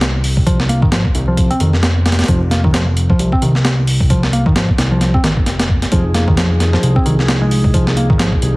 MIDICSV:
0, 0, Header, 1, 5, 480
1, 0, Start_track
1, 0, Key_signature, -4, "minor"
1, 0, Tempo, 454545
1, 493, Time_signature, 4, 2, 24, 8
1, 9046, End_track
2, 0, Start_track
2, 0, Title_t, "Tonewheel organ"
2, 0, Program_c, 0, 16
2, 6247, Note_on_c, 0, 63, 62
2, 6248, Note_on_c, 0, 53, 67
2, 6251, Note_on_c, 0, 68, 75
2, 9046, Note_off_c, 0, 53, 0
2, 9046, Note_off_c, 0, 63, 0
2, 9046, Note_off_c, 0, 68, 0
2, 9046, End_track
3, 0, Start_track
3, 0, Title_t, "Picked electric bass"
3, 0, Program_c, 1, 34
3, 492, Note_on_c, 1, 53, 90
3, 605, Note_off_c, 1, 53, 0
3, 730, Note_on_c, 1, 58, 74
3, 844, Note_off_c, 1, 58, 0
3, 869, Note_on_c, 1, 51, 97
3, 953, Note_off_c, 1, 51, 0
3, 970, Note_on_c, 1, 53, 82
3, 1084, Note_off_c, 1, 53, 0
3, 1350, Note_on_c, 1, 53, 70
3, 1577, Note_off_c, 1, 53, 0
3, 1588, Note_on_c, 1, 60, 70
3, 1686, Note_off_c, 1, 60, 0
3, 1691, Note_on_c, 1, 51, 69
3, 1805, Note_off_c, 1, 51, 0
3, 2412, Note_on_c, 1, 53, 99
3, 2525, Note_off_c, 1, 53, 0
3, 2650, Note_on_c, 1, 58, 70
3, 2765, Note_off_c, 1, 58, 0
3, 2792, Note_on_c, 1, 51, 98
3, 2874, Note_off_c, 1, 51, 0
3, 2895, Note_on_c, 1, 53, 80
3, 3007, Note_off_c, 1, 53, 0
3, 3273, Note_on_c, 1, 53, 73
3, 3498, Note_off_c, 1, 53, 0
3, 3513, Note_on_c, 1, 60, 68
3, 3608, Note_off_c, 1, 60, 0
3, 3613, Note_on_c, 1, 51, 68
3, 3726, Note_off_c, 1, 51, 0
3, 4332, Note_on_c, 1, 53, 90
3, 4445, Note_off_c, 1, 53, 0
3, 4573, Note_on_c, 1, 58, 72
3, 4686, Note_off_c, 1, 58, 0
3, 4713, Note_on_c, 1, 51, 90
3, 4795, Note_off_c, 1, 51, 0
3, 4813, Note_on_c, 1, 53, 77
3, 4926, Note_off_c, 1, 53, 0
3, 5189, Note_on_c, 1, 53, 67
3, 5416, Note_off_c, 1, 53, 0
3, 5430, Note_on_c, 1, 60, 69
3, 5527, Note_off_c, 1, 60, 0
3, 5532, Note_on_c, 1, 51, 86
3, 5600, Note_off_c, 1, 51, 0
3, 6251, Note_on_c, 1, 53, 92
3, 6365, Note_off_c, 1, 53, 0
3, 6491, Note_on_c, 1, 58, 73
3, 6605, Note_off_c, 1, 58, 0
3, 6630, Note_on_c, 1, 51, 94
3, 6713, Note_off_c, 1, 51, 0
3, 6731, Note_on_c, 1, 53, 81
3, 6845, Note_off_c, 1, 53, 0
3, 7109, Note_on_c, 1, 53, 74
3, 7336, Note_off_c, 1, 53, 0
3, 7349, Note_on_c, 1, 60, 72
3, 7446, Note_off_c, 1, 60, 0
3, 7451, Note_on_c, 1, 51, 69
3, 7565, Note_off_c, 1, 51, 0
3, 7831, Note_on_c, 1, 56, 74
3, 8162, Note_off_c, 1, 56, 0
3, 8173, Note_on_c, 1, 53, 90
3, 8286, Note_off_c, 1, 53, 0
3, 8413, Note_on_c, 1, 58, 72
3, 8526, Note_off_c, 1, 58, 0
3, 8551, Note_on_c, 1, 51, 98
3, 8634, Note_off_c, 1, 51, 0
3, 8653, Note_on_c, 1, 53, 82
3, 8766, Note_off_c, 1, 53, 0
3, 9046, End_track
4, 0, Start_track
4, 0, Title_t, "Analog synth bass"
4, 0, Program_c, 2, 38
4, 0, Note_on_c, 2, 36, 84
4, 869, Note_on_c, 2, 32, 73
4, 885, Note_off_c, 2, 36, 0
4, 1153, Note_off_c, 2, 32, 0
4, 1213, Note_on_c, 2, 36, 98
4, 1634, Note_off_c, 2, 36, 0
4, 1692, Note_on_c, 2, 29, 92
4, 2354, Note_off_c, 2, 29, 0
4, 2412, Note_on_c, 2, 29, 105
4, 3313, Note_off_c, 2, 29, 0
4, 3372, Note_on_c, 2, 36, 96
4, 3539, Note_off_c, 2, 36, 0
4, 3611, Note_on_c, 2, 36, 84
4, 4712, Note_on_c, 2, 32, 75
4, 4727, Note_off_c, 2, 36, 0
4, 4994, Note_off_c, 2, 32, 0
4, 5052, Note_on_c, 2, 36, 102
4, 5473, Note_off_c, 2, 36, 0
4, 5531, Note_on_c, 2, 32, 82
4, 5771, Note_on_c, 2, 29, 83
4, 5787, Note_off_c, 2, 32, 0
4, 6193, Note_off_c, 2, 29, 0
4, 6249, Note_on_c, 2, 29, 102
4, 7152, Note_off_c, 2, 29, 0
4, 7211, Note_on_c, 2, 36, 103
4, 7378, Note_off_c, 2, 36, 0
4, 7451, Note_on_c, 2, 36, 86
4, 8554, Note_on_c, 2, 32, 77
4, 8570, Note_off_c, 2, 36, 0
4, 8835, Note_off_c, 2, 32, 0
4, 8892, Note_on_c, 2, 36, 95
4, 9046, Note_off_c, 2, 36, 0
4, 9046, End_track
5, 0, Start_track
5, 0, Title_t, "Drums"
5, 13, Note_on_c, 9, 38, 114
5, 13, Note_on_c, 9, 42, 90
5, 119, Note_off_c, 9, 38, 0
5, 119, Note_off_c, 9, 42, 0
5, 253, Note_on_c, 9, 46, 78
5, 358, Note_off_c, 9, 46, 0
5, 391, Note_on_c, 9, 36, 92
5, 492, Note_off_c, 9, 36, 0
5, 492, Note_on_c, 9, 36, 103
5, 492, Note_on_c, 9, 42, 84
5, 597, Note_off_c, 9, 36, 0
5, 598, Note_off_c, 9, 42, 0
5, 631, Note_on_c, 9, 38, 55
5, 732, Note_on_c, 9, 42, 67
5, 737, Note_off_c, 9, 38, 0
5, 838, Note_off_c, 9, 42, 0
5, 870, Note_on_c, 9, 36, 95
5, 970, Note_on_c, 9, 38, 106
5, 970, Note_on_c, 9, 42, 83
5, 976, Note_off_c, 9, 36, 0
5, 1076, Note_off_c, 9, 38, 0
5, 1076, Note_off_c, 9, 42, 0
5, 1109, Note_on_c, 9, 36, 89
5, 1211, Note_on_c, 9, 42, 65
5, 1215, Note_off_c, 9, 36, 0
5, 1317, Note_off_c, 9, 42, 0
5, 1451, Note_on_c, 9, 36, 101
5, 1451, Note_on_c, 9, 42, 80
5, 1556, Note_off_c, 9, 36, 0
5, 1556, Note_off_c, 9, 42, 0
5, 1590, Note_on_c, 9, 42, 42
5, 1691, Note_off_c, 9, 42, 0
5, 1691, Note_on_c, 9, 42, 66
5, 1796, Note_off_c, 9, 42, 0
5, 1830, Note_on_c, 9, 38, 36
5, 1930, Note_off_c, 9, 38, 0
5, 1930, Note_on_c, 9, 38, 117
5, 1930, Note_on_c, 9, 42, 86
5, 2036, Note_off_c, 9, 38, 0
5, 2036, Note_off_c, 9, 42, 0
5, 2172, Note_on_c, 9, 38, 90
5, 2172, Note_on_c, 9, 42, 65
5, 2241, Note_off_c, 9, 38, 0
5, 2241, Note_off_c, 9, 42, 0
5, 2241, Note_on_c, 9, 38, 89
5, 2241, Note_on_c, 9, 42, 65
5, 2311, Note_off_c, 9, 38, 0
5, 2311, Note_off_c, 9, 42, 0
5, 2311, Note_on_c, 9, 38, 86
5, 2311, Note_on_c, 9, 42, 66
5, 2362, Note_off_c, 9, 38, 0
5, 2362, Note_off_c, 9, 42, 0
5, 2362, Note_on_c, 9, 38, 88
5, 2362, Note_on_c, 9, 42, 66
5, 2411, Note_off_c, 9, 42, 0
5, 2411, Note_on_c, 9, 36, 105
5, 2411, Note_on_c, 9, 42, 88
5, 2468, Note_off_c, 9, 38, 0
5, 2516, Note_off_c, 9, 42, 0
5, 2517, Note_off_c, 9, 36, 0
5, 2653, Note_on_c, 9, 38, 55
5, 2653, Note_on_c, 9, 42, 69
5, 2758, Note_off_c, 9, 38, 0
5, 2758, Note_off_c, 9, 42, 0
5, 2790, Note_on_c, 9, 36, 94
5, 2892, Note_on_c, 9, 38, 107
5, 2892, Note_on_c, 9, 42, 84
5, 2895, Note_off_c, 9, 36, 0
5, 2998, Note_off_c, 9, 38, 0
5, 2998, Note_off_c, 9, 42, 0
5, 3133, Note_on_c, 9, 42, 78
5, 3239, Note_off_c, 9, 42, 0
5, 3270, Note_on_c, 9, 36, 82
5, 3372, Note_on_c, 9, 42, 87
5, 3375, Note_off_c, 9, 36, 0
5, 3478, Note_off_c, 9, 42, 0
5, 3509, Note_on_c, 9, 36, 90
5, 3611, Note_on_c, 9, 42, 69
5, 3615, Note_off_c, 9, 36, 0
5, 3717, Note_off_c, 9, 42, 0
5, 3749, Note_on_c, 9, 38, 38
5, 3850, Note_off_c, 9, 38, 0
5, 3850, Note_on_c, 9, 38, 116
5, 3850, Note_on_c, 9, 42, 91
5, 3956, Note_off_c, 9, 38, 0
5, 3956, Note_off_c, 9, 42, 0
5, 4091, Note_on_c, 9, 46, 75
5, 4197, Note_off_c, 9, 46, 0
5, 4229, Note_on_c, 9, 36, 88
5, 4330, Note_off_c, 9, 36, 0
5, 4330, Note_on_c, 9, 36, 110
5, 4331, Note_on_c, 9, 42, 89
5, 4436, Note_off_c, 9, 36, 0
5, 4436, Note_off_c, 9, 42, 0
5, 4471, Note_on_c, 9, 38, 55
5, 4573, Note_on_c, 9, 42, 69
5, 4576, Note_off_c, 9, 38, 0
5, 4679, Note_off_c, 9, 42, 0
5, 4710, Note_on_c, 9, 36, 94
5, 4813, Note_on_c, 9, 38, 105
5, 4813, Note_on_c, 9, 42, 83
5, 4815, Note_off_c, 9, 36, 0
5, 4918, Note_off_c, 9, 38, 0
5, 4918, Note_off_c, 9, 42, 0
5, 4949, Note_on_c, 9, 36, 91
5, 5052, Note_on_c, 9, 38, 100
5, 5052, Note_on_c, 9, 42, 79
5, 5055, Note_off_c, 9, 36, 0
5, 5157, Note_off_c, 9, 38, 0
5, 5157, Note_off_c, 9, 42, 0
5, 5290, Note_on_c, 9, 38, 45
5, 5290, Note_on_c, 9, 42, 57
5, 5396, Note_off_c, 9, 38, 0
5, 5396, Note_off_c, 9, 42, 0
5, 5429, Note_on_c, 9, 36, 83
5, 5531, Note_on_c, 9, 38, 102
5, 5531, Note_on_c, 9, 42, 76
5, 5535, Note_off_c, 9, 36, 0
5, 5637, Note_off_c, 9, 38, 0
5, 5637, Note_off_c, 9, 42, 0
5, 5669, Note_on_c, 9, 36, 84
5, 5769, Note_on_c, 9, 38, 48
5, 5769, Note_on_c, 9, 42, 65
5, 5774, Note_off_c, 9, 36, 0
5, 5875, Note_off_c, 9, 38, 0
5, 5875, Note_off_c, 9, 42, 0
5, 5908, Note_on_c, 9, 38, 99
5, 5908, Note_on_c, 9, 42, 77
5, 6010, Note_on_c, 9, 36, 85
5, 6014, Note_off_c, 9, 38, 0
5, 6014, Note_off_c, 9, 42, 0
5, 6115, Note_off_c, 9, 36, 0
5, 6149, Note_on_c, 9, 38, 45
5, 6149, Note_on_c, 9, 42, 58
5, 6249, Note_off_c, 9, 42, 0
5, 6249, Note_on_c, 9, 42, 90
5, 6250, Note_on_c, 9, 36, 107
5, 6255, Note_off_c, 9, 38, 0
5, 6354, Note_off_c, 9, 42, 0
5, 6356, Note_off_c, 9, 36, 0
5, 6489, Note_on_c, 9, 38, 56
5, 6489, Note_on_c, 9, 42, 69
5, 6595, Note_off_c, 9, 38, 0
5, 6595, Note_off_c, 9, 42, 0
5, 6629, Note_on_c, 9, 36, 94
5, 6730, Note_on_c, 9, 38, 104
5, 6730, Note_on_c, 9, 42, 81
5, 6735, Note_off_c, 9, 36, 0
5, 6835, Note_off_c, 9, 38, 0
5, 6835, Note_off_c, 9, 42, 0
5, 6972, Note_on_c, 9, 38, 53
5, 6972, Note_on_c, 9, 42, 67
5, 7078, Note_off_c, 9, 38, 0
5, 7078, Note_off_c, 9, 42, 0
5, 7110, Note_on_c, 9, 38, 53
5, 7213, Note_on_c, 9, 42, 82
5, 7216, Note_off_c, 9, 38, 0
5, 7318, Note_off_c, 9, 42, 0
5, 7350, Note_on_c, 9, 36, 94
5, 7453, Note_on_c, 9, 42, 68
5, 7456, Note_off_c, 9, 36, 0
5, 7559, Note_off_c, 9, 42, 0
5, 7592, Note_on_c, 9, 38, 38
5, 7692, Note_off_c, 9, 38, 0
5, 7692, Note_on_c, 9, 38, 123
5, 7692, Note_on_c, 9, 42, 88
5, 7798, Note_off_c, 9, 38, 0
5, 7798, Note_off_c, 9, 42, 0
5, 7933, Note_on_c, 9, 46, 80
5, 8039, Note_off_c, 9, 46, 0
5, 8071, Note_on_c, 9, 36, 99
5, 8173, Note_off_c, 9, 36, 0
5, 8173, Note_on_c, 9, 36, 109
5, 8174, Note_on_c, 9, 42, 89
5, 8279, Note_off_c, 9, 36, 0
5, 8279, Note_off_c, 9, 42, 0
5, 8312, Note_on_c, 9, 38, 55
5, 8414, Note_on_c, 9, 42, 68
5, 8418, Note_off_c, 9, 38, 0
5, 8520, Note_off_c, 9, 42, 0
5, 8552, Note_on_c, 9, 36, 95
5, 8653, Note_on_c, 9, 38, 113
5, 8653, Note_on_c, 9, 42, 84
5, 8658, Note_off_c, 9, 36, 0
5, 8759, Note_off_c, 9, 38, 0
5, 8759, Note_off_c, 9, 42, 0
5, 8791, Note_on_c, 9, 36, 93
5, 8893, Note_on_c, 9, 42, 67
5, 8897, Note_off_c, 9, 36, 0
5, 8998, Note_off_c, 9, 42, 0
5, 9046, End_track
0, 0, End_of_file